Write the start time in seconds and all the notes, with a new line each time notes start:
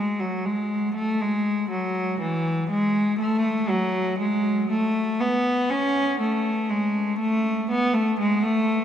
Already playing: G#3
0.20 F#3
0.46 G#3
0.95 A3
1.21 G#3
1.71 F#3
2.20 E3
2.70 G#3
3.19 A3
3.69 F#3
4.19 G#3
4.70 A3
5.20 B3
5.70 C#4
6.20 A3
6.70 G#3
7.19 A3
7.71 B3
7.94 A3
8.19 G#3
8.43 A3